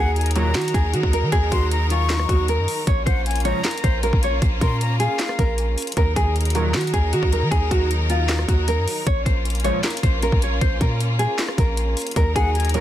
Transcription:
Already playing: 808-style bass D#2, string section D#3 F#3 D#4 A#4, nylon-string guitar G#4, flute F#5
0.16 flute G#5, closed hi-hat
0.21 closed hi-hat
0.26 closed hi-hat
0.31 closed hi-hat
0.35 analog polysynth D#2 A#2 F#3, nylon-string guitar A#4, flute A#5, closed hi-hat
0.55 808-style bass D#3, nylon-string guitar F#4, snare, clap, closed hi-hat
0.62 closed hi-hat
0.68 closed hi-hat
0.74 808-style bass D#2, nylon-string guitar G#4, kick, closed hi-hat
0.93 808-style bass D#3, nylon-string guitar F#4, closed hi-hat
1.03 808-style bass D#2, kick
1.13 nylon-string guitar A#4, closed hi-hat
1.23 808-style bass D#3
1.32 808-style bass D#2, nylon-string guitar G#4, kick, closed hi-hat
1.51 808-style bass D#2, nylon-string guitar F#4, flute C6, kick, closed hi-hat
1.71 flute A#5, closed hi-hat
1.90 nylon-string guitar F4, flute C#6, closed hi-hat
2.10 cross-stick, snare, clap, closed hi-hat
2.20 cross-stick
2.29 808-style bass D#2, nylon-string guitar F#4, kick, closed hi-hat
2.48 nylon-string guitar A#4, closed hi-hat
2.58 808-style bass F#2
2.68 open hi-hat
2.87 808-style bass A#1, string section A#3 C#4 F4, nylon-string guitar C#5, kick, closed hi-hat
3.06 808-style bass A#1, nylon-string guitar C5, flute F#5, kick, closed hi-hat
3.26 flute G#5, closed hi-hat
3.31 closed hi-hat
3.36 closed hi-hat
3.40 closed hi-hat
3.45 analog polysynth C#2 A#2 F3, nylon-string guitar C#5, flute A#5, closed hi-hat
3.64 nylon-string guitar A#4, snare, clap, closed hi-hat
3.71 closed hi-hat
3.78 closed hi-hat
3.83 808-style bass A#1, nylon-string guitar C5, kick, closed hi-hat
4.03 nylon-string guitar A#4, closed hi-hat
4.13 808-style bass A#1, kick
4.23 nylon-string guitar C#5, closed hi-hat
4.42 808-style bass A#1, nylon-string guitar C5, kick, closed hi-hat
4.61 808-style bass A#2, nylon-string guitar A#4, flute C6, kick, closed hi-hat
4.81 flute A#5, closed hi-hat
4.99 nylon-string guitar G#4, flute F5, closed hi-hat
5.19 snare, clap, closed hi-hat
5.29 cross-stick
5.39 808-style bass A#1, nylon-string guitar A#4, kick, closed hi-hat
5.58 closed hi-hat
5.78 closed hi-hat, open hi-hat
5.82 closed hi-hat
5.87 closed hi-hat
5.92 closed hi-hat
5.97 808-style bass D#2, string section D#3 F#3 D#4 A#4, nylon-string guitar A#4, kick, closed hi-hat
6.16 808-style bass D#2, nylon-string guitar G#4, kick, closed hi-hat
6.36 closed hi-hat
6.41 closed hi-hat
6.45 closed hi-hat
6.50 closed hi-hat
6.55 analog polysynth D#2 A#2 F#3, nylon-string guitar A#4, closed hi-hat
6.74 808-style bass D#3, nylon-string guitar F#4, snare, clap, closed hi-hat
6.81 closed hi-hat
6.87 closed hi-hat
6.93 808-style bass D#2, nylon-string guitar G#4, kick, closed hi-hat
7.13 808-style bass D#3, nylon-string guitar F#4, closed hi-hat
7.23 808-style bass D#2, kick
7.33 nylon-string guitar A#4, closed hi-hat
7.42 808-style bass D#3
7.51 808-style bass D#2, nylon-string guitar G#4, kick, closed hi-hat
7.71 808-style bass D#2, nylon-string guitar F#4, kick, closed hi-hat
7.91 closed hi-hat
8.10 nylon-string guitar F4, closed hi-hat
8.29 cross-stick, snare, clap, closed hi-hat
8.39 cross-stick
8.48 808-style bass D#2, nylon-string guitar F#4, kick, closed hi-hat
8.68 nylon-string guitar A#4, closed hi-hat
8.78 808-style bass F#2
8.88 open hi-hat
9.07 808-style bass A#1, string section A#3 C#4 F4, nylon-string guitar C#5, kick, closed hi-hat
9.25 808-style bass A#1, nylon-string guitar C5, kick, closed hi-hat
9.45 closed hi-hat
9.50 closed hi-hat
9.55 closed hi-hat
9.60 closed hi-hat
9.64 analog polysynth C#2 A#2 F3, nylon-string guitar C#5, closed hi-hat
9.84 nylon-string guitar A#4, snare, clap, closed hi-hat
9.90 closed hi-hat
9.97 closed hi-hat
10.03 808-style bass A#1, nylon-string guitar C5, kick, closed hi-hat
10.22 nylon-string guitar A#4, closed hi-hat
10.32 808-style bass A#1, kick
10.42 nylon-string guitar C#5, closed hi-hat
10.61 808-style bass A#1, nylon-string guitar C5, kick, closed hi-hat
10.81 808-style bass A#2, nylon-string guitar A#4, kick, closed hi-hat
11.00 closed hi-hat
11.19 nylon-string guitar G#4, closed hi-hat
11.39 snare, clap, closed hi-hat
11.49 cross-stick
11.58 808-style bass A#1, nylon-string guitar A#4, kick, closed hi-hat
11.77 closed hi-hat
11.97 closed hi-hat, open hi-hat
12.02 closed hi-hat
12.07 closed hi-hat
12.11 closed hi-hat
12.16 808-style bass D#2, string section D#3 F#3 D#4 A#4, nylon-string guitar A#4, kick, closed hi-hat
12.35 808-style bass D#2, nylon-string guitar G#4, flute F#5, kick, closed hi-hat
12.55 flute G#5, closed hi-hat
12.60 closed hi-hat
12.65 closed hi-hat
12.69 closed hi-hat
12.74 analog polysynth D#2 A#2 F#3, nylon-string guitar A#4, flute A#5, closed hi-hat

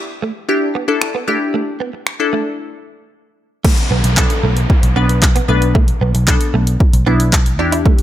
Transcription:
0.22 clean electric guitar A3
0.49 synth pluck D4 E4 G4
0.75 clean electric guitar B3
0.88 synth pluck D4 E4 A4
1.01 finger snap, muted clean electric guitar stroke
1.15 clean electric guitar B3
1.28 clean electric guitar A3, synth pluck D4 E4 G4
1.54 clean electric guitar A3
1.80 clean electric guitar B3
1.93 muted clean electric guitar stroke
2.07 finger snap
2.20 synth pluck D4 E4 A4
2.33 clean electric guitar A3
3.65 clean electric guitar A3, kick, crash, downlifter
3.77 closed hi-hat
3.91 picked electric bass B1, clean electric guitar B3
4.04 picked electric bass B1, muted clean electric guitar stroke, closed hi-hat
4.17 synth pluck B3 D4 A4, kick, clap
4.30 closed hi-hat
4.43 picked electric bass B1, clean electric guitar A3
4.57 closed hi-hat
4.70 kick
4.83 picked electric bass B1, closed hi-hat
4.96 picked electric bass B1, synth pluck B3 D4 B4, clean electric guitar B3
5.09 closed hi-hat
5.22 muted clean electric guitar stroke, kick, clap
5.36 clean electric guitar B3, closed hi-hat
5.48 picked electric bass B1, clean electric guitar A3, synth pluck B3 D4 B4
5.62 closed hi-hat
5.75 clean electric guitar A3, kick
5.88 closed hi-hat
6.01 picked electric bass B1, clean electric guitar B3
6.14 picked electric bass B1, muted clean electric guitar stroke, closed hi-hat
6.27 synth pluck B3 D4 A4, kick, clap
6.41 closed hi-hat
6.54 picked electric bass B1, clean electric guitar A3
6.67 closed hi-hat
6.80 kick
6.93 picked electric bass B1, closed hi-hat
7.06 picked electric bass B1, synth pluck B3 D4 E4, clean electric guitar B3
7.20 closed hi-hat
7.33 muted clean electric guitar stroke, kick, clap
7.46 closed hi-hat
7.59 picked electric bass E2, synth pluck D4 E4 G4, clean electric guitar D4
7.72 clean electric guitar E4, closed hi-hat
7.86 clean electric guitar A3, kick
7.99 closed hi-hat

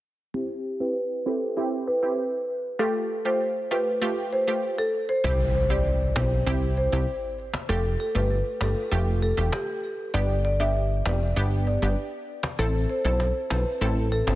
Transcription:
0.34 synth pluck C4 E4 G4, marimba G4
0.80 synth pluck C4 E4 G4, marimba B4
1.26 synth pluck C4 E4 G4, marimba A4
1.57 synth pluck C4 E4 G4
1.87 marimba B4
2.03 synth pluck C4 E4 G4
2.79 synth pluck A3 F4 G4, marimba A4
3.25 synth pluck A3 F4 G4, marimba C5
3.71 synth pluck A3 F4 G4, marimba B4
4.02 synth pluck A3 F4 G4
4.33 marimba C5
4.48 synth pluck A3 F4 G4
4.78 marimba A4
5.09 marimba C5
5.24 analog synth bass C2, synth pluck C4 E4 G4, marimba C5, impact
5.55 marimba C5
5.70 synth pluck C4 E4 G4, marimba D5
6.16 analog synth bass B1, synth pluck C4 E4 G4, marimba C5, cajon slap
6.47 analog synth bass C2, synth pluck C4 E4 G4
6.77 marimba C5
6.92 analog synth bass C2, synth pluck C4 E4 G4
7.54 cajon slap
7.69 analog synth bass F1, synth pluck A3 F4 G4, marimba A4
8.00 marimba A4
8.15 analog synth bass G1, synth pluck A3 F4 G4, marimba B4
8.61 analog synth bass G1, synth pluck A3 F4 G4, marimba A4, cajon slap
8.91 analog synth bass F1, synth pluck A3 F4 G4
9.22 marimba A4
9.37 analog synth bass E1, synth pluck A3 F4 G4
9.53 marimba G4, cajon slap
10.14 analog synth bass G1, synth pluck B3 D4 G4, marimba D5
10.45 marimba D5
10.60 synth pluck B3 D4 G4, marimba E5
11.06 analog synth bass F1, synth pluck B3 D4 G4, marimba D5, cajon slap
11.36 analog synth bass G1, synth pluck B3 D4 G4
11.67 marimba D5
11.82 analog synth bass G1, synth pluck B3 D4 G4
12.43 cajon slap
12.59 analog synth bass A1, synth pluck C4 E4 A4, marimba A4
12.90 marimba C5
13.05 analog synth bass B1, synth pluck C4 E4 A4, marimba C5
13.20 cajon slap
13.50 analog synth bass B1, synth pluck C4 E4 A4, marimba B4, cajon slap
13.81 analog synth bass A1, synth pluck C4 E4 A4
14.12 marimba A4
14.27 analog synth bass G1, synth pluck C4 E4 A4, cajon slap

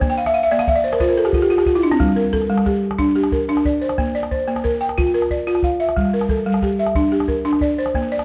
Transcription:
Already playing: balafon C5 D5
0.01 balafon A#3, calabash thump
0.10 balafon G5, calabash click
0.18 balafon F5
0.26 balafon E5, calabash click
0.34 balafon F5
0.43 balafon E5, calabash click
0.51 balafon A#3 D5
0.59 balafon F5, calabash click
0.68 balafon E5, calabash thump, calabash click
0.76 balafon D5
0.84 balafon C5
0.93 balafon A#4, calabash click
1.00 balafon F4 C5, calabash thump
1.09 balafon A#4
1.18 balafon A4
1.25 balafon G4, calabash click
1.33 balafon F4, calabash thump
1.42 balafon G4
1.50 balafon F4, calabash click
1.58 balafon G4, calabash click
1.66 balafon F4, calabash thump
1.75 balafon E4
1.83 balafon D4
1.92 balafon C4, calabash click
2.00 balafon G3, calabash thump
2.09 calabash click
2.16 balafon A#4
2.33 balafon A4, calabash thump
2.41 calabash click
2.50 balafon G3
2.58 calabash click
2.66 balafon G4, calabash thump, calabash click
2.91 calabash click
2.99 balafon D4, calabash thump
3.16 balafon G4
3.24 calabash click
3.32 balafon A#4, calabash thump
3.49 balafon D4, calabash click
3.57 calabash click
3.65 balafon D5, calabash thump
3.81 balafon C5
3.89 calabash click
3.98 balafon A#3, calabash thump
4.15 balafon D5
4.23 calabash click
4.31 balafon C5, calabash thump
4.48 balafon A#3, calabash click
4.56 calabash click
4.64 balafon A#4, calabash thump
4.81 balafon G5, calabash click
4.89 calabash click
4.97 balafon F4, calabash thump
5.06 calabash click
5.14 balafon A#4, calabash click
5.22 calabash click
5.30 balafon D5, calabash thump
5.47 balafon F4, calabash click
5.55 calabash click
5.63 balafon F5, calabash thump, calabash click
5.80 balafon E5
5.89 calabash click
5.96 balafon G3, calabash thump
6.05 calabash click
6.13 balafon A#4
6.21 calabash click
6.29 balafon A4, calabash thump
6.37 calabash click
6.46 balafon G3
6.54 calabash click
6.62 balafon G4, calabash thump, calabash click
6.79 balafon E5
6.86 calabash click
6.95 balafon D4, calabash thump
7.12 balafon G4
7.20 calabash click
7.28 balafon A#4, calabash thump
7.45 balafon D4, calabash click
7.53 calabash click
7.61 balafon D5, calabash thump
7.79 balafon C5
7.86 calabash click
7.94 balafon A#3, calabash thump
8.02 calabash click
8.12 balafon D5
8.19 calabash click

